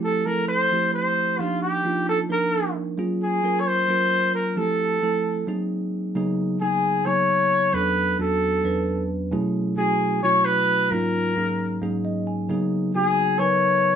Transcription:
Already playing: F3 A3 C4 E4 G4
0.04 A4
0.26 F3 A3 C4 E4 A4 A#4
0.48 C5
0.72 F3 A3 C4 E4 G4
0.94 C5
1.39 F3 A#3 D4 D#4 F4 G4
1.63 G4
1.84 F3 A#3 D4 D#4 F4
2.09 A4
2.29 F3 A#3 D4 D#4 A#4
2.98 F#3 A#3 C#4 F4 G#4
3.23 G#4
3.43 F#3 A#3 C#4 F4 A#4
3.60 C#5
3.67 C5
3.88 F#3 A#3 C#4 F4 A#4
4.35 A#4
4.56 F3 A3 C4 E4 G4 A4
5.02 F3 A3 C4 E4 A4
5.47 F#3 A#3 C4 D#4 G#4
6.15 C#3 F#3 A#3 B3 D#4 G#4
6.60 C#3 F#3 A#3 B3 D#4 G#4
7.05 C#3 F#3 A#3 B3 D#4 G#4 C#5
7.73 E2 F#3 B3 C#4 D4 A4 B4
8.18 E2 F#3 B3 C#4 D4 F#4 A4
8.63 E2 F#3 B3 C#4 D4 B4
9.31 B2 F#3 A3 C#4 E4 G#4
9.77 B2 F#3 A3 C#4 E4 F#4 G#4
10.23 B2 F#3 A3 C#4 E4 F#4 C#5
10.45 B4
10.91 G#2 F#3 A#3 C#4 D#4 F4 A#4
11.36 G#2 F#3 A#3 C#4 D#4 G#4
11.81 G#2 F#3 A#3 C#4 D#4 G#4
12.05 D#5
12.27 G#5
12.49 C#3 F#3 A#3 B3 D#4 G#4
12.94 C#3 F#3 A#3 B3 D#4 F#4 G#4
13.39 C#3 F#3 B3 D#4 A#4 B4 C#5

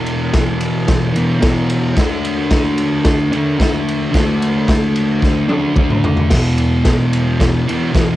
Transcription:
Already playing: E2 B2 E3
0.06 ride
0.33 kick, snare, ride
0.61 ride
0.88 kick, snare, ride
1.13 B2 E3, ride
1.18 E2
1.40 E2 B2, kick, snare, ride
1.45 E3
1.70 ride
1.96 D3 A3, kick, snare, ride
2.01 D4
2.25 ride
2.51 kick, snare, ride
2.78 ride
3.05 kick, snare, ride
3.31 A3 D4, ride
3.36 D3
3.59 D3 A3, kick, snare, ride
3.63 D4
3.88 ride
4.12 D3 A3, kick, snare, ride
4.16 D4
4.42 ride
4.68 kick, snare, ride
4.96 ride
5.22 kick, snare
5.48 A3 D4, high tom
5.54 D3
5.74 D3 A3, kick, mid tom
5.80 D4
5.90 mid tom
6.04 floor tom
6.17 floor tom
6.30 E2, kick, snare, crash
6.35 B2 E3
6.58 ride
6.85 kick, snare, ride
7.13 ride
7.40 kick, snare, ride
7.67 B2 E3, ride
7.72 E2
7.92 E2 B2, kick, snare, ride
7.97 E3

